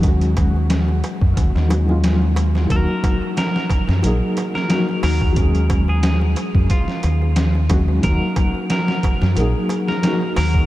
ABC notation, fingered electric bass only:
X:1
M:4/4
L:1/16
Q:"Swing 16ths" 1/4=90
K:Ebm
V:1 name="Fingered electric bass" clef=bass
E,,6 z G,, E,, E,,6- E,, | E,, z6 G,, B,,, z4 z E,,2- | E,,6 z G,, z2 E,,6 | E,, z6 G,, B,,, z4 z E,,2 |]